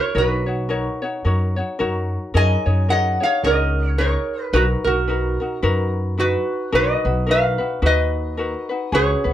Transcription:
Already playing: E4 F#4 A#4 B4 C#5
0.15 B1 D#4 F#4 A#4 B4 C#5
0.20 F#4
0.46 D#4 F#4 C#5
0.69 D#4 F#4 A#4 C#5
1.02 D#4 F#4 C#5
1.24 F#2 D#4 F#4 A#4 C#5
1.56 D#4 F#4 C#5
1.79 F#2 D#4 F#4 A#4 C#5
2.34 F#2 D#4 G#4 A#4 C#5 D#5 G#5
2.66 F#2 D#4 G#4 C#5
2.89 D#4 G#4 A#4 C#5 D#5 F#5
3.20 D#4 G#4 C#5 F5
3.25 C#5
3.44 C#2 D#4 G#4 A#4 C#5 D#5
3.88 C#5
3.98 D#4 G#4 A#4 C#5
4.43 B4
4.53 B1 D#4 F#4 A#4 B4
4.84 B1 D#4 F#4 A#4
5.07 D#4 F#4 A#4 B4
5.40 D#4 F#4 A#4
5.62 F#2 D#4 F#4 A#4 B4
6.18 D#4 F#4 B4
6.72 B1 D#4 F#4 A#4 B4 D#5
7.05 B1 D#4 F#4 B4
7.26 D#4 F#4 A#4 B4
7.31 B4 F5
7.58 D#4 F#4 B4
7.82 D#2 D#4 F#4 B4
7.86 B4 D#5
8.37 D#4 F#4 A#4 B4
8.69 D#4 F#4 B4
8.92 C#2 C#4 F#4 G#4 B4 C#5
9.24 C#2 C#4 F#4 B4

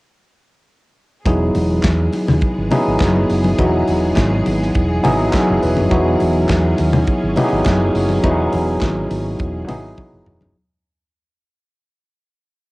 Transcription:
1.25 E1 E3 F#3 G#3 B3 D#4 E4 G#4, kick, closed hi-hat, muted conga
1.55 E1, open hi-hat, muted conga
1.83 E2, kick, snare, clap, closed hi-hat, high conga
2.12 open hi-hat, muted conga
2.28 D#2, snare, low conga
2.41 kick, closed hi-hat
2.58 G#1
2.71 F#3 B3 D#4 E4 G#4, open hi-hat, muted conga, low conga
2.87 G#1
3.00 F#1, kick, snare, clap, closed hi-hat, high conga
3.30 F#1, open hi-hat
3.44 high conga
3.58 E1 F#3 B3 D#4 E4 F#4, kick, closed hi-hat, muted conga
3.87 E1, open hi-hat, muted conga
4.16 G#1, kick, snare, clap, closed hi-hat, high conga
4.46 G#1, open hi-hat, muted conga
4.63 snare
4.75 E1, kick, closed hi-hat
5.03 G#1 F#3 B3 D#4 E4 G#4 G#5, open hi-hat, muted conga, low conga
5.33 E5, kick, snare, clap, closed hi-hat, high conga
5.50 F#1
5.63 E1 B4, open hi-hat
5.77 F#1, high conga
5.90 E1 F#3 B3 C#4 D#4 E4 F#4, kick, closed hi-hat, muted conga
6.20 E1, open hi-hat, muted conga
6.49 E2, kick, snare, clap, closed hi-hat, high conga
6.78 D#2, open hi-hat, muted conga
6.93 low conga
7.07 kick, closed hi-hat
7.23 G#1
7.36 F#3 B3 D#4 E4 G4, open hi-hat, muted conga, low conga
7.44 G#4
7.52 G#1
7.66 F#1, kick, snare, clap, closed hi-hat, high conga
7.95 F#1, open hi-hat
8.09 high conga
8.23 E1 F#3 B3 D#4 E4 F#4, kick, closed hi-hat, muted conga
8.31 G#4
8.53 E1, open hi-hat, muted conga
8.81 G#1, kick, snare, clap, closed hi-hat, high conga
9.10 G#1, open hi-hat, muted conga
9.39 E1, kick, closed hi-hat
9.67 G#1 F#3 B3 D#4 E4 G#4, open hi-hat, muted conga, low conga
9.97 kick, high tom, high conga
10.13 F#1
10.26 E1, mid tom
10.41 F#1, floor tom, high conga

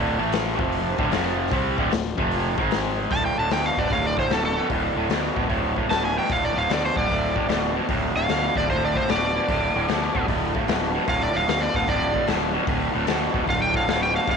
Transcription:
Already playing: D1 D2 A2 D3
0.19 A1 A2 E3 A3
0.32 snare, open hi-hat
0.59 F1 F2 C3 F3, kick
0.72 open hi-hat
0.99 D1 D2 A2 D3, kick
1.11 F1 F2 C3 F3, snare, open hi-hat
1.46 snare
1.51 C2 C3 G3 C4, kick, open hi-hat
1.78 D1 D2 A2 D3, kick
1.91 D1 D2 A2, snare, open hi-hat
2.17 F1 F2 C3 F3, kick
2.31 open hi-hat
2.57 G#1 G#2 D#3 G#3, kick
2.71 snare, open hi-hat
3.11 D1 D2 A2 A5, kick, open hi-hat
3.26 G5
3.38 D1 D2 A2 A5
3.50 D2 B2 G5, snare, open hi-hat
3.66 F5
3.77 D1 D2 B2 D5, kick
3.90 D1 D2 A2 F5, kick, open hi-hat
4.07 D5
4.17 D2 A2 C5, kick
4.30 D1 D2 B2 A4, snare, open hi-hat
4.45 A4
4.56 D2 B2
4.70 D1 D2 A2, kick, open hi-hat
4.96 D1 D2 A2
5.09 D2 B2, snare, open hi-hat
5.36 D1 D2 B2, kick
5.49 D1 D2 A2, kick, open hi-hat
5.76 D2 A2, kick
5.89 D1 D2 B2 A5, snare, open hi-hat
6.05 G#5
6.16 D2 B2 G5
6.24 snare
6.29 D1 D2 A2 F5, kick, open hi-hat
6.44 D5
6.56 D1 D2 A2 F5
6.68 D2 B2 D5, snare, open hi-hat
6.86 C5
6.95 D1 D2 B2 D5, kick
7.09 D1 D2 A2, kick, open hi-hat
7.35 D2 A2, kick
7.49 D1 D2 B2, snare, open hi-hat
7.75 D2 B2
7.88 D1 D2 A2, kick, open hi-hat
8.15 D1 D2 A2 F5
8.28 D2 B2, snare, open hi-hat
8.55 D1 D2 B2 D5, kick
8.67 D1 D2 A2 C5, kick, open hi-hat
8.85 D5
8.94 D2 A2 C5, kick
9.08 D1 D2 B2 D5, snare, open hi-hat
9.34 D2 B2
9.48 D1 D2 A2, kick, open hi-hat
9.75 D1 D2 A2
9.88 D2 B2, snare, open hi-hat
10.14 D1 D2 B2, kick
10.27 D1 D2 A2, kick, open hi-hat
10.54 D2 A2, kick
10.67 D1 D2 B2, snare, open hi-hat
10.94 D2 B2
11.07 D1 D2 A2 F5, kick, open hi-hat
11.23 D5
11.34 D1 D2 A2 F5
11.47 D2 B2 F5, snare, open hi-hat
11.61 D5
11.74 D1 D2 B2 F5, kick
11.87 D1 D2 A2 D5, kick, open hi-hat
12.14 D2 A2, kick
12.27 D1 D2 B2, snare, open hi-hat
12.53 D2 B2
12.67 D1 D2 A2, kick, open hi-hat
12.93 D1 D2 A2
13.07 D2 B2, snare, open hi-hat
13.33 D1 D2 B2, kick
13.47 D1 D2 A2 F5, kick, open hi-hat
13.62 G5
13.74 D2 A2 F5, kick
13.87 D1 D2 B2 F5, snare, open hi-hat
14.03 G5
14.13 D2 B2 F5
14.27 D1 D2 A2 F5, kick, open hi-hat

